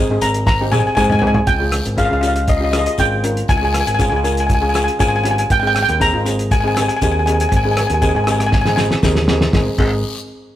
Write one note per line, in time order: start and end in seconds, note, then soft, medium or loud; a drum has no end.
0.00 0.23 G#5 loud
0.10 0.20 G#1 medium
0.10 0.40 C4 medium
0.10 0.40 D#4 medium
0.10 0.40 G#4 medium
0.21 0.86 G#1 medium
0.21 0.45 A#5 medium
0.21 closed hi-hat medium
0.21 short guiro medium
0.34 closed hi-hat medium
0.46 0.58 A#5 medium
0.46 kick loud
0.46 snare medium
0.46 long guiro medium
0.61 0.68 C4 medium
0.61 0.68 D#4 medium
0.61 0.68 G4 medium
0.72 0.88 C4 medium
0.72 0.88 D#4 medium
0.72 0.88 G#4 medium
0.72 0.78 G#5 medium
0.72 high tom medium
0.72 short guiro medium
0.80 0.86 G#5 medium
0.87 0.94 G#5 medium
0.95 1.40 G#2 medium
0.95 1.13 C4 medium
0.95 1.13 D#4 medium
0.95 1.13 G#4 medium
0.95 0.97 G#5 medium
0.95 1.00 G#5 medium
0.95 kick medium
0.95 mid tom medium
0.95 short guiro medium
1.01 1.03 G#5 medium
1.01 1.08 G#5 medium
1.10 1.12 G#5 medium
1.10 1.18 G#5 medium
1.10 mid tom medium
1.19 1.45 C4 medium
1.19 1.45 D#4 medium
1.19 1.26 G#5 medium
1.19 floor tom loud
1.23 1.45 G#4 medium
1.23 1.34 G#5 medium
1.34 1.43 G#5 medium
1.34 floor tom loud
1.47 1.80 C#2 medium
1.47 1.99 G5 medium
1.47 kick loud
1.47 closed hi-hat medium
1.47 long guiro medium
1.59 1.82 C#4 medium
1.59 1.83 F4 medium
1.59 1.83 G#4 medium
1.72 cross-stick medium
1.72 closed hi-hat medium
1.85 2.07 G#1 medium
1.85 closed hi-hat medium
1.97 2.05 C#4 medium
1.97 2.05 F4 medium
1.97 2.05 G#4 medium
1.97 2.04 F5 medium
1.97 kick medium
1.97 closed hi-hat medium
1.97 short guiro medium
2.05 2.12 F5 medium
2.10 2.85 C#2 medium
2.10 2.18 C#4 medium
2.10 2.18 F4 medium
2.10 2.18 G#4 medium
2.10 2.20 F5 medium
2.21 2.45 C#4 medium
2.21 2.45 F4 medium
2.21 2.45 G4 medium
2.21 2.27 F5 medium
2.21 closed hi-hat medium
2.21 short guiro medium
2.28 2.35 F5 medium
2.36 2.43 F5 soft
2.36 closed hi-hat medium
2.47 2.56 D#5 medium
2.47 kick loud
2.47 closed hi-hat medium
2.47 long guiro medium
2.57 2.68 C#4 medium
2.57 2.68 F4 medium
2.57 2.68 G4 medium
2.57 2.63 D#5 medium
2.64 2.70 D#5 medium
2.72 2.88 C#4 medium
2.72 2.89 F4 medium
2.72 2.89 G#4 medium
2.72 2.78 D#5 medium
2.72 cross-stick medium
2.72 closed hi-hat medium
2.72 short guiro medium
2.79 2.86 D#5 medium
2.86 2.94 D#5 medium
2.86 closed hi-hat medium
2.98 3.41 G#1 medium
2.98 3.14 C#4 medium
2.98 3.14 F4 medium
2.98 3.14 G#4 medium
2.98 3.51 G5 medium
2.98 kick medium
2.98 closed hi-hat medium
2.98 short guiro medium
3.23 3.46 C#4 medium
3.23 3.46 F4 medium
3.23 3.47 A#4 medium
3.23 closed hi-hat medium
3.37 closed hi-hat medium
3.48 3.81 C#2 medium
3.48 3.56 G#5 medium
3.48 kick loud
3.48 closed hi-hat medium
3.48 long guiro medium
3.57 3.64 G#5 medium
3.62 3.84 C#4 medium
3.62 3.84 F4 medium
3.62 3.84 G#4 medium
3.62 3.71 G#5 medium
3.73 3.79 G#5 medium
3.73 cross-stick medium
3.73 closed hi-hat medium
3.80 3.86 G#5 medium
3.87 4.08 G#1 medium
3.87 3.93 G#5 medium
3.87 closed hi-hat medium
3.95 4.00 G#5 medium
3.99 4.07 C#4 medium
3.99 4.06 F4 medium
3.99 4.07 G#4 medium
3.99 4.08 G#5 medium
3.99 kick medium
3.99 closed hi-hat medium
3.99 short guiro medium
4.10 4.87 C#2 medium
4.10 4.19 C#4 medium
4.10 4.19 F4 medium
4.10 4.19 G#4 medium
4.10 4.15 G#5 medium
4.16 4.23 G#5 medium
4.23 4.47 C#4 medium
4.23 4.46 F4 medium
4.23 4.47 A#4 medium
4.23 4.31 G#5 medium
4.23 closed hi-hat medium
4.23 short guiro medium
4.32 4.39 G#5 soft
4.37 4.45 G#5 medium
4.37 closed hi-hat medium
4.47 4.53 G#5 medium
4.47 kick loud
4.47 closed hi-hat medium
4.47 long guiro medium
4.55 4.61 G#5 medium
4.61 4.69 C#4 medium
4.61 4.69 F4 medium
4.61 4.69 G#4 medium
4.61 4.68 G#5 medium
4.69 4.75 G#5 medium
4.74 4.90 C#4 medium
4.74 4.90 F4 medium
4.74 4.90 G#4 medium
4.74 4.83 G#5 medium
4.74 cross-stick medium
4.74 closed hi-hat medium
4.74 short guiro medium
4.84 4.92 G#5 medium
4.88 closed hi-hat medium
4.99 5.43 G#1 medium
4.99 5.15 C#4 medium
4.99 5.15 F4 medium
4.99 5.15 G#4 medium
4.99 5.07 G#5 medium
4.99 kick medium
4.99 closed hi-hat medium
4.99 short guiro medium
5.08 5.15 G#5 medium
5.16 5.22 G#5 medium
5.24 5.47 C#4 medium
5.24 5.47 F4 medium
5.24 5.48 G4 medium
5.24 5.30 G#5 medium
5.24 closed hi-hat medium
5.31 5.38 G#5 medium
5.38 5.46 G#5 medium
5.38 closed hi-hat medium
5.50 5.83 G#1 medium
5.50 5.59 G5 loud
5.50 kick loud
5.50 closed hi-hat medium
5.50 long guiro medium
5.60 5.85 C4 medium
5.60 5.85 D#4 medium
5.60 5.86 G#4 medium
5.60 5.66 G5 medium
5.67 5.73 G5 medium
5.75 5.81 G5 medium
5.75 cross-stick medium
5.75 closed hi-hat medium
5.82 5.88 G5 medium
5.89 6.10 D#2 loud
5.89 5.96 G5 medium
5.89 closed hi-hat medium
6.00 6.08 C4 medium
6.00 6.08 D#4 medium
6.00 6.08 G#4 medium
6.00 6.53 A#5 loud
6.00 kick medium
6.00 closed hi-hat medium
6.00 short guiro medium
6.13 6.88 G#1 medium
6.13 6.20 C4 medium
6.13 6.21 D#4 medium
6.13 6.21 F4 medium
6.25 6.48 C4 medium
6.25 6.48 D#4 medium
6.25 6.49 G#4 medium
6.25 closed hi-hat medium
6.25 short guiro medium
6.39 closed hi-hat medium
6.51 6.58 G#5 medium
6.51 kick loud
6.51 closed hi-hat medium
6.51 long guiro medium
6.60 6.71 C4 medium
6.60 6.71 D#4 medium
6.60 6.67 G#5 medium
6.64 6.71 G#4 medium
6.64 6.73 G#5 medium
6.75 6.91 C4 medium
6.75 6.92 D#4 medium
6.75 6.92 G4 medium
6.75 6.81 G#5 medium
6.75 cross-stick medium
6.75 closed hi-hat medium
6.75 short guiro medium
6.82 6.87 G#5 medium
6.88 6.95 G#5 medium
6.88 closed hi-hat medium
6.97 7.03 G#5 medium
7.01 7.44 D#2 medium
7.01 7.17 C4 medium
7.01 7.17 D#4 medium
7.01 7.17 G#4 medium
7.01 7.10 G#5 medium
7.01 kick medium
7.01 closed hi-hat medium
7.01 short guiro medium
7.12 7.18 G#5 medium
7.19 7.25 G#5 medium
7.26 7.50 C4 medium
7.26 7.50 D#4 medium
7.26 7.50 G#4 medium
7.26 7.33 G#5 medium
7.26 closed hi-hat medium
7.34 7.40 G#5 medium
7.40 7.48 G#5 medium
7.40 closed hi-hat medium
7.49 7.84 G#1 medium
7.49 7.55 G#5 medium
7.49 kick loud
7.49 closed hi-hat medium
7.49 long guiro medium
7.57 7.62 G#5 medium
7.64 7.87 C4 medium
7.64 7.87 D#4 medium
7.64 7.88 G#4 medium
7.64 7.70 G#5 medium
7.71 7.78 G#5 medium
7.77 7.86 G#5 medium
7.77 cross-stick loud
7.77 closed hi-hat medium
7.87 8.11 D#2 medium
7.87 7.93 G#5 medium
7.87 closed hi-hat medium
7.94 8.01 G#5 medium
8.02 8.10 C4 medium
8.02 8.10 D#4 medium
8.02 8.10 G#4 medium
8.02 8.08 G#5 medium
8.02 kick medium
8.02 closed hi-hat medium
8.02 short guiro medium
8.09 8.15 G#5 medium
8.14 8.90 G#1 medium
8.14 8.22 C4 medium
8.14 8.22 D#4 medium
8.14 8.22 G#4 medium
8.14 8.23 G#5 medium
8.24 8.50 C4 medium
8.24 8.50 D#4 medium
8.24 8.50 G4 medium
8.24 8.31 G#5 medium
8.24 cross-stick medium
8.24 closed hi-hat medium
8.24 short guiro medium
8.32 8.38 G#5 medium
8.39 8.45 G#5 medium
8.39 cross-stick medium
8.39 closed hi-hat medium
8.46 8.53 G#5 medium
8.52 8.60 G#5 medium
8.52 kick loud
8.52 snare medium
8.52 long guiro medium
8.61 8.73 C4 medium
8.61 8.68 G#5 medium
8.65 8.73 D#4 medium
8.65 8.73 G#4 medium
8.65 8.75 G#5 medium
8.65 snare medium
8.76 8.93 C4 medium
8.76 8.93 D#4 medium
8.76 8.94 G#4 medium
8.76 8.83 G#5 medium
8.76 snare medium
8.76 short guiro medium
8.91 snare medium
9.03 9.46 D#2 medium
9.03 9.18 C4 medium
9.03 9.18 D#4 medium
9.03 9.19 G#4 loud
9.03 kick medium
9.03 snare medium
9.03 short guiro medium
9.15 snare medium
9.28 9.51 C4 medium
9.28 9.51 D#4 medium
9.28 9.51 G#4 medium
9.28 snare medium
9.41 snare medium
9.53 9.67 G#1 medium
9.53 9.68 C4 medium
9.53 9.68 D#4 medium
9.53 9.68 G#4 medium
9.53 kick loud
9.53 snare loud
9.53 long guiro medium
9.78 10.02 G#1 medium
9.78 10.02 C4 medium
9.78 10.02 D#4 medium
9.78 10.02 G#4 medium
9.78 kick loud
9.78 crash medium
9.78 long guiro medium